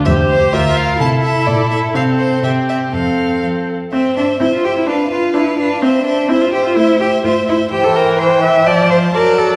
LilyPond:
<<
  \new Staff \with { instrumentName = "Violin" } { \time 2/4 \key f \major \tempo 4 = 126 e''8 c''8 e''8 f''8 | a''8 e''8 d''8 e''8 | f''8 c''8 e''8 e''8 | f''4 r4 |
\key c \major e''8 e''8 e''8 e''8 | f''8 f''8 f''8 f''8 | e''8 e''8 e''8 e''8 | e''8 e''8 e''8 e''8 |
\key f \major g''4 g''4 | a''4 a''4 | }
  \new Staff \with { instrumentName = "Violin" } { \time 2/4 \key f \major c''4 bes'4 | a'2 | a'4 g'4 | a'4. r8 |
\key c \major c''8 c''8 c''8 c''8 | b'8 b'8 b'8 b'8 | c''8 c''8 c''8 c''8 | c''8 c''8 c''8 c''8 |
\key f \major c''4 c''4 | c''4 d''4 | }
  \new Staff \with { instrumentName = "Cello" } { \time 2/4 \key f \major e,4 d,4 | c4 bes,4 | c4 c4 | f,4 f4 |
\key c \major c'8 d'8 e'16 f'16 g'16 e'16 | d'8 f'8 e'8 d'8 | c'8 d'8 e'16 f'16 g'16 f'16 | e'8 g'8 f'8 e'8 |
\key f \major g'16 a'16 bes'8 c''8 e''8 | d''8 c''8 bes'8 a'8 | }
  \new Staff \with { instrumentName = "Viola" } { \time 2/4 \key f \major g'4 f'4 | e'2 | c'4 c'4 | c'4. r8 |
\key c \major c'4 c'4 | d'4 d'4 | c'4 c'4 | a4 a4 |
\key f \major e2 | f4 fis4 | }
>>